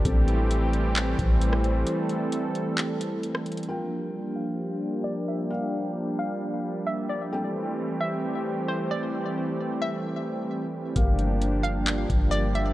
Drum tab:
HH |x---x---x---x---x---x---x---x---|x---x---x---x---x---x---x---xxxx|--------------------------------|--------------------------------|
CP |----------------x---------------|----------------x---------------|--------------------------------|--------------------------------|
SD |--------------------------r-----|--------------------------r-----|--------------------------------|--------------------------------|
BD |o-------------------o-----------|--------------------------------|--------------------------------|--------------------------------|

HH |--------------------------------|--------------------------------|x---x---x---x---x---x---x---x---|
CP |--------------------------------|--------------------------------|----------------x---------------|
SD |--------------------------------|--------------------------------|--------------------------------|
BD |--------------------------------|--------------------------------|o-------------------o-----------|